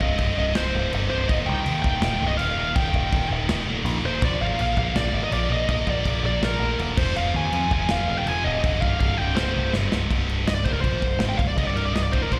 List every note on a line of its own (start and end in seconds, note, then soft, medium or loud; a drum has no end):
0.01 0.14 C1 loud
0.01 0.18 C2 medium
0.01 0.19 G2 medium
0.01 0.19 C3 loud
0.01 0.35 D#5 medium
0.01 kick medium
0.18 0.32 C1 medium
0.18 0.35 C2 loud
0.18 0.36 G2 medium
0.18 0.37 C3 loud
0.18 kick medium
0.18 crash medium
0.36 0.51 C1 loud
0.36 0.54 C2 medium
0.36 0.55 G2 medium
0.36 0.55 C3 loud
0.36 0.56 D#5 loud
0.55 0.69 C1 medium
0.55 0.72 C2 loud
0.55 0.72 G2 loud
0.55 0.74 C3 loud
0.55 0.89 C5 medium
0.55 snare loud
0.55 crash medium
0.74 0.88 C1 loud
0.74 0.90 C2 medium
0.74 0.90 G2 loud
0.74 0.91 C3 loud
0.91 1.07 G1 loud
0.91 1.08 C2 loud
0.91 1.09 G2 loud
0.91 1.09 C3 loud
0.91 crash medium
1.10 1.25 C1 medium
1.10 1.27 C2 medium
1.10 1.27 G2 medium
1.10 1.28 C3 medium
1.10 1.29 C5 loud
1.27 1.43 D#1 loud
1.27 1.46 D#2 loud
1.27 1.46 A#2 loud
1.27 1.48 D#3 loud
1.27 1.33 D#5 medium
1.27 kick loud
1.27 crash medium
1.47 1.62 C2 loud
1.47 1.64 D#2 medium
1.47 1.64 A#2 medium
1.47 1.66 D#3 medium
1.47 1.81 G5 loud
1.65 1.82 D#2 loud
1.65 1.80 D#2 medium
1.65 1.82 A#2 loud
1.65 1.84 D#3 medium
1.65 crash medium
1.82 1.98 D#1 loud
1.82 2.00 D#2 medium
1.82 2.01 A#2 medium
1.82 2.02 D#3 loud
1.82 2.30 G5 loud
1.82 kick medium
2.02 2.16 D#1 loud
2.02 2.19 D#2 loud
2.02 2.19 A#2 loud
2.02 2.20 D#3 loud
2.02 snare loud
2.02 crash medium
2.20 2.35 C1 loud
2.20 2.37 D#2 medium
2.20 2.38 A#2 loud
2.20 2.38 D#3 loud
2.27 2.37 D#5 loud
2.37 2.53 D#1 loud
2.37 2.56 D#2 loud
2.37 2.56 A#2 loud
2.37 2.57 D#3 loud
2.37 2.75 F5 medium
2.37 crash medium
2.57 2.71 D#1 medium
2.57 2.74 D#2 medium
2.57 2.74 A#2 medium
2.57 2.75 D#3 medium
2.75 2.89 D#1 loud
2.75 2.93 D#2 loud
2.75 2.94 A#2 loud
2.75 2.94 D#3 loud
2.75 3.27 G5 medium
2.75 kick loud
2.75 crash medium
2.94 3.08 D#1 loud
2.94 3.11 D#2 loud
2.94 3.12 A#2 loud
2.94 3.12 D#3 medium
2.94 kick medium
3.12 3.26 D#1 loud
3.12 3.29 D#2 medium
3.12 3.30 A#2 loud
3.12 3.31 D#3 loud
3.12 kick loud
3.12 crash medium
3.31 3.45 D#1 loud
3.31 3.48 D#2 medium
3.31 3.49 A#2 medium
3.31 3.49 D#3 medium
3.49 3.63 D#1 medium
3.49 3.65 D#2 loud
3.49 3.65 A#2 loud
3.49 3.66 D#3 loud
3.49 snare loud
3.49 crash medium
3.66 3.81 D#1 loud
3.66 3.83 D#2 medium
3.66 3.84 A#2 loud
3.66 3.85 D#3 loud
3.85 3.99 A#1 loud
3.85 4.03 D#2 medium
3.85 4.04 A#2 loud
3.85 4.05 D#3 loud
3.85 crash medium
4.04 4.17 D#1 medium
4.04 4.21 D#2 medium
4.04 4.22 A#2 medium
4.04 4.22 D#3 medium
4.04 4.24 C5 loud
4.22 4.36 A#1 loud
4.22 4.40 A#2 loud
4.22 4.41 F3 loud
4.22 4.42 A#3 loud
4.22 4.42 D5 medium
4.22 kick loud
4.22 crash medium
4.40 4.54 G#1 loud
4.40 4.58 A#2 medium
4.40 4.59 F3 loud
4.40 4.60 A#3 medium
4.40 4.60 F5 medium
4.59 4.73 A#1 medium
4.59 4.76 A#2 medium
4.59 4.77 F3 loud
4.59 4.77 A#3 loud
4.59 4.77 F5 medium
4.59 crash medium
4.77 4.91 A#1 loud
4.77 4.93 A#2 loud
4.77 4.95 F3 medium
4.77 4.95 A#3 loud
4.77 4.96 F5 loud
4.77 kick medium
4.94 5.09 A#1 medium
4.94 5.11 A#2 loud
4.94 5.13 F3 loud
4.94 5.13 A#3 loud
4.94 5.22 D5 loud
4.94 snare loud
4.94 crash medium
5.13 5.27 G#1 loud
5.13 5.30 A#2 medium
5.13 5.32 F3 loud
5.13 5.32 A#3 loud
5.24 5.33 D#5 loud
5.31 5.45 A#1 loud
5.31 5.48 A#2 medium
5.31 5.50 F3 medium
5.31 5.50 A#3 loud
5.31 5.52 D5 loud
5.31 crash medium
5.49 5.63 A#1 medium
5.49 5.67 A#2 medium
5.49 5.69 F3 medium
5.49 5.69 A#3 loud
5.49 5.70 D#5 loud
5.68 5.83 A#1 loud
5.68 5.86 A#2 loud
5.68 5.87 F3 loud
5.68 5.87 A#3 loud
5.68 5.90 D#5 loud
5.68 kick loud
5.68 crash medium
5.87 6.01 A#1 loud
5.87 6.05 A#2 medium
5.87 6.06 F3 medium
5.87 6.06 A#3 medium
5.87 6.25 D5 loud
5.87 kick medium
6.05 6.19 A#1 loud
6.05 6.23 A#2 loud
6.05 6.24 F3 medium
6.05 6.24 A#3 loud
6.05 kick medium
6.05 crash medium
6.23 6.37 A#1 loud
6.23 6.41 A#2 medium
6.23 6.42 F3 medium
6.23 6.42 A#3 loud
6.23 6.44 D5 loud
6.42 6.56 A#1 loud
6.42 6.60 A#2 loud
6.42 6.60 F3 loud
6.42 6.62 A#3 loud
6.42 6.78 A#4 loud
6.42 snare loud
6.42 crash medium
6.59 6.74 A#1 loud
6.59 6.78 A#2 loud
6.59 6.79 F3 medium
6.59 6.80 A#3 loud
6.78 6.92 D#1 loud
6.78 6.97 A#2 loud
6.78 6.97 F3 loud
6.78 6.97 A#3 loud
6.78 crash medium
6.97 7.11 F1 medium
6.97 7.15 F2 loud
6.97 7.16 C3 loud
6.97 7.17 F3 loud
6.97 7.15 C5 loud
6.97 kick loud
6.97 crash loud
7.15 7.29 F1 medium
7.15 7.35 F2 loud
7.15 7.35 C3 loud
7.15 7.36 F3 loud
7.15 7.35 F5 loud
7.15 crash medium
7.34 7.48 D#2 loud
7.34 7.52 F2 medium
7.34 7.53 C3 loud
7.34 7.53 F3 loud
7.34 7.72 G#5 loud
7.52 7.66 F2 loud
7.52 7.71 F2 loud
7.52 7.72 C3 loud
7.52 7.72 F3 loud
7.52 crash medium
7.71 7.85 F1 loud
7.71 7.90 F2 medium
7.71 7.90 C3 medium
7.71 7.91 F3 medium
7.71 7.91 G#5 loud
7.71 kick medium
7.89 8.04 F1 medium
7.89 8.09 F2 loud
7.89 8.09 C3 loud
7.89 8.10 F3 loud
7.89 8.18 F5 loud
7.89 snare loud
7.89 crash medium
8.08 8.22 D#1 loud
8.08 8.27 F2 medium
8.08 8.27 C3 medium
8.08 8.28 F3 loud
8.18 8.28 G5 loud
8.26 8.40 F1 loud
8.26 8.45 F2 loud
8.26 8.46 C3 loud
8.26 8.46 F3 loud
8.26 8.45 G#5 loud
8.26 crash medium
8.44 8.59 D1 medium
8.44 8.63 F2 medium
8.44 8.63 C3 medium
8.44 8.63 F3 loud
8.44 8.79 D#5 loud
8.64 8.78 C1 loud
8.64 8.81 C2 loud
8.64 8.81 G2 loud
8.64 8.82 C3 loud
8.64 kick loud
8.64 crash medium
8.80 8.96 C1 loud
8.80 8.99 C2 medium
8.80 8.99 G2 medium
8.80 9.00 C3 medium
8.80 8.99 F5 medium
8.80 kick medium
9.00 9.14 C1 loud
9.00 9.18 C2 loud
9.00 9.19 G2 loud
9.00 9.19 C3 loud
9.00 9.17 F5 loud
9.00 kick medium
9.00 crash medium
9.17 9.33 C1 medium
9.17 9.36 C2 medium
9.17 9.37 G2 medium
9.17 9.37 C3 medium
9.17 9.37 G5 loud
9.36 9.51 C1 medium
9.36 9.54 C2 medium
9.36 9.55 G2 loud
9.36 9.56 C3 loud
9.36 9.70 C5 medium
9.36 snare loud
9.36 crash medium
9.55 9.70 C1 loud
9.55 9.72 C2 medium
9.55 9.73 G2 medium
9.55 9.73 C3 loud
9.73 9.87 G1 medium
9.73 9.91 C2 medium
9.73 9.91 G2 loud
9.73 9.92 C3 loud
9.73 snare medium
9.91 10.05 C1 medium
9.91 10.09 C2 medium
9.91 10.09 G2 medium
9.91 10.10 C3 loud
9.91 snare loud
10.10 10.45 C1 medium
10.10 10.46 C2 medium
10.10 10.46 G2 loud
10.10 10.47 C3 loud
10.10 kick loud
10.10 crash medium
10.29 crash medium
10.46 10.64 C1 medium
10.46 10.62 C2 medium
10.46 10.62 G2 medium
10.46 10.54 D#5 medium
10.46 snare loud
10.46 crash medium
10.55 10.64 D5 medium
10.64 10.83 C#1 loud
10.64 10.83 C#2 medium
10.64 10.84 G#2 loud
10.64 10.84 C#3 loud
10.64 10.73 C5 medium
10.64 kick loud
10.64 crash medium
10.73 10.80 A#4 medium
10.80 11.01 A#1 medium
10.80 11.01 A#2 medium
10.80 11.01 F3 loud
10.80 11.19 C5 medium
10.80 kick medium
10.80 crash medium
10.85 11.02 A#3 loud
11.01 11.19 C1 medium
11.01 11.17 C2 medium
11.01 11.17 G2 medium
11.01 kick medium
11.01 crash medium
11.20 11.37 G#1 loud
11.20 11.38 G#2 loud
11.20 11.39 D#3 medium
11.20 11.39 G#3 medium
11.20 snare loud
11.20 crash medium
11.29 11.38 G5 medium
11.37 11.56 C1 medium
11.37 11.54 C2 medium
11.37 11.54 G2 medium
11.37 11.47 F5 loud
11.37 kick medium
11.37 crash medium
11.48 11.57 D5 medium
11.58 11.92 C1 medium
11.58 11.93 C2 loud
11.58 11.93 G2 loud
11.58 11.95 C3 loud
11.58 11.66 D#5 medium
11.58 kick loud
11.58 crash medium
11.67 11.76 D5 medium
11.76 11.85 A#4 medium
11.76 crash medium
11.85 11.93 D5 medium
11.93 12.11 C1 medium
11.93 12.09 C2 medium
11.93 12.09 G2 medium
11.93 12.03 D#5 medium
11.93 snare loud
11.93 crash medium
12.03 12.12 D5 medium
12.11 12.30 C#1 loud
12.11 12.30 C#2 medium
12.11 12.30 G#2 medium
12.11 12.31 C#3 medium
12.11 12.22 C5 medium
12.11 kick loud
12.11 crash medium
12.22 12.33 A#4 medium
12.31 12.39 A#1 medium
12.31 12.39 A#2 loud
12.31 12.39 F3 loud
12.31 12.39 A#3 loud
12.31 12.39 C5 medium
12.31 kick medium
12.31 crash medium